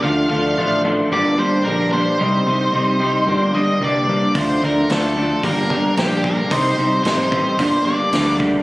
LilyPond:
<<
  \new Staff \with { instrumentName = "Lead electric guitar" } { \time 4/4 \key g \minor \tempo 4 = 111 f''8 f''4 r8 d''8 c''8 bes'8 c''8~ | c''2~ c''8 ees''8 d''4 | c''8 bes'8 a'4 bes'4 g'8 bes'8 | c''4 c''4. d''4 r8 | }
  \new Staff \with { instrumentName = "Clean electric guitar" } { \time 4/4 \key g \minor <d a d' f'>8 <d a d' f'>8 <d a d' f'>8 <d a d' f'>8 <g, d g bes d' g'>8 <g, d g bes d' g'>8 <g, d g bes d' g'>8 <g, d g bes d' g'>8 | <c g c' ees' g'>8 <c g c' ees' g'>8 <c g c' ees' g'>8 <c g c' ees' g'>8 <g, d g bes d' g'>8 <g, d g bes d' g'>8 <g, d g bes d' g'>8 <g, d g bes d' g'>8 | <d a d' f'>8 <d a d' f'>8 <d a d' f'>8 <d a d' f'>8 <g, d g bes d' g'>8 <g, d g bes d' g'>8 <g, d g bes d' g'>8 <g, d g bes d' g'>8 | <c g c' ees' g'>8 <c g c' ees' g'>8 <c g c' ees' g'>8 <c g c' ees' g'>8 <g, d g bes d' g'>8 <g, d g bes d' g'>8 <g, d g bes d' g'>8 <g, d g bes d' g'>8 | }
  \new Staff \with { instrumentName = "Clean electric guitar" } { \clef bass \time 4/4 \key g \minor <d f a d'>8 <d f a d'>8 <d f a d'>8 <d f a d'>8 <g, d g bes d'>8 <g, d g bes d'>8 <g, d g bes d'>8 <g, d g bes d'>8 | <c g c' ees'>8 <c g c' ees'>8 <c g c' ees'>8 <c g c' ees'>8 <g, d g bes d'>8 <g, d g bes d'>8 <g, d g bes d'>8 <g, d g bes d'>8 | <d f a d'>8 <d f a d'>8 <d f a d'>8 <d f a d'>8 <g, d g bes d'>8 <g, d g bes d'>8 <g, d g bes d'>8 <g, d g bes d'>8 | <c g c' ees'>8 <c g c' ees'>8 <c g c' ees'>8 <c g c' ees'>8 <g, d g bes d'>8 <g, d g bes d'>8 <g, d g bes d'>8 <g, d g bes d'>8 | }
  \new Staff \with { instrumentName = "Fingered electric bass" } { \clef bass \time 4/4 \key g \minor d,8 d,8 a,,4 g,,4 bes,,4 | c,8 c,8 c,4 g,,4 c,4 | d,8 d,8 d,4 g,,4 bes,,4 | c,8 c,8 a,,4 g,,4 d,4 | }
  \new DrumStaff \with { instrumentName = "Drums" } \drummode { \time 4/4 r4 r4 r4 r4 | r4 r4 r4 r4 | <hho bd>4 <hho sn>4 <hho bd>8 bd8 <hho sn>8 bd8 | <hho bd>4 <hho sn>8 bd8 <hho bd>4 <hho sn>8 bd8 | }
>>